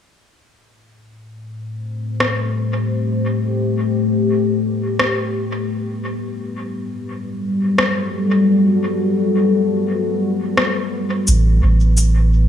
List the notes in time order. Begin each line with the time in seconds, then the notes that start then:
0.11 A3
0.70 C5
0.82 G4
1.54 B4
2.20 cross-stick
4.99 cross-stick
5.69 G3
6.21 F#4 A4
7.78 cross-stick
10.57 cross-stick
11.27 A1 A3, cabasa
11.56 G4
11.63 A1
11.97 cabasa